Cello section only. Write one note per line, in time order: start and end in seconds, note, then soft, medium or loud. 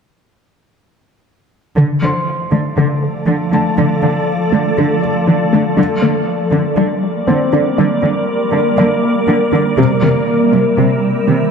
1.77 1.85 D3 soft
2.02 2.10 D3 soft
2.52 2.60 D3 soft
2.78 2.86 D3 soft
3.27 3.35 D3 soft
3.52 3.60 D3 soft
3.78 3.86 D3 soft
4.03 4.11 D3 soft
4.53 4.61 D3 soft
4.78 4.86 D3 soft
5.28 5.36 D3 soft
5.53 5.61 D3 soft
5.77 5.85 D3 soft
6.02 6.10 D3 soft
6.52 6.60 D3 soft
6.78 6.86 D3 soft
7.28 7.36 D3 soft
7.52 7.60 D3 soft
7.78 7.86 D3 soft
8.02 8.10 D3 soft
8.53 8.61 D3 soft
8.78 8.86 D3 soft
9.28 9.36 D3 soft
9.53 9.61 D3 soft
9.78 9.86 C3 soft
10.03 10.11 C3 soft
10.53 10.61 C3 soft
10.78 10.86 C3 soft
11.28 11.36 C3 soft